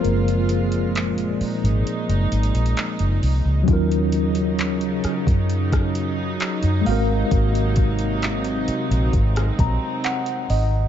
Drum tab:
HH |x-x-x-x-x-x-o-x-x-x-xxxxx-x-o---|x-x-x-x-x-x-x-x-x-x-x---x-x-o---|x-x-x-x-x-x-x-x-x-x-x---x-x-o---|
CP |--------x---------------x-------|--------x---------------x-------|--------x---------------x-------|
SD |--------------------------------|------------r-----r-------------|------------------r-------------|
BD |--------------------------------|o-------------o---o-------------|o---o-----------o---o-----------|